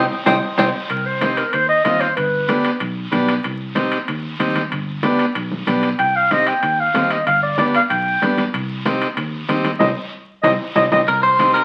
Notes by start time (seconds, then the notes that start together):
0.25 C2 C4 D#4 G4 C5 D#5 G5, high conga, high timbale, long guiro
0.58 C2 C4 D#4 G4 C5 D#5 G5, high conga, high timbale, long guiro
0.89 C2 A#4, high conga, high timbale, long guiro
1.06 C5
1.21 C4 D#4 G4, high conga, high timbale, short guiro
1.37 A#4, high timbale, short guiro
1.53 D#2 C5, high conga, high timbale, long guiro
1.69 D#5
1.84 D#2 C4 D#4 F4 D#5, high conga, high timbale, short guiro
2.01 C5, high timbale, short guiro
2.16 G1 B4, high conga, high timbale, long guiro
2.48 B3 D4 G4, high conga, high timbale, short guiro
2.64 high timbale, short guiro
2.80 B1, high conga, high timbale, long guiro
3.11 B1 B3 D4 G4, high conga, high timbale, short guiro
3.28 high timbale, short guiro
3.44 C2, high conga, high timbale, long guiro
3.75 C4 D#4 G4, high conga, high timbale, short guiro
3.92 high timbale, short guiro
4.08 D#2, high conga, high timbale, long guiro
4.39 D#2 C4 D#4 G4, high conga, high timbale, short guiro
4.55 high conga, high timbale, short guiro
4.71 G1, high conga, high timbale, long guiro
5.03 B3 D4 G4, high conga, high timbale, short guiro
5.19 high timbale, short guiro
5.35 B1, high conga, high timbale, long guiro
5.51 high conga
5.67 B1 B3 D4 G4, high conga, high timbale, short guiro
5.83 high timbale, short guiro
5.99 C2 G5, high conga, high timbale, long guiro
6.16 F5
6.31 C4 D#4 G4 D#5, high conga, high timbale, short guiro
6.47 G5, high timbale, short guiro
6.63 D#2, high conga, high timbale, long guiro
6.80 F5
6.94 D#2 C4 D#4 G4, high conga, high timbale, low timbale, short guiro
7.10 D#5, high timbale, short guiro
7.26 G1 F5, high conga, high timbale, long guiro
7.43 D5
7.58 B3 D4 G4 D5, high conga, high timbale, short guiro
7.74 F5, high timbale, short guiro
7.90 B1 G5, high conga, high timbale, long guiro
8.22 G2 B3 D4 G4, high conga, high timbale, low timbale, short guiro
8.37 high conga, high timbale, short guiro
8.54 C2, high conga, high timbale, long guiro
8.85 C4 D#4 G4, high conga, high timbale, short guiro
9.01 high timbale, short guiro
9.17 D#2, high conga, high timbale, long guiro
9.48 D#2 C4 D#4 G4, high conga, high timbale, short guiro
9.64 high conga, high timbale, short guiro
9.80 C2 C4 D#4 G4 D#5, high conga, high timbale, long guiro
10.43 C2 C4 D#4 G4 D#5, high conga, high timbale, long guiro
10.76 C2 C4 D#4 G4 D#5, high conga, high timbale, long guiro
10.91 C2 C4 D#4 G4 D#5, high conga, high timbale, long guiro
11.08 C2 A#4, high conga, high timbale, long guiro
11.23 C5
11.39 C4 D#4 G4, high conga, high timbale, short guiro
11.54 A#4, high timbale, short guiro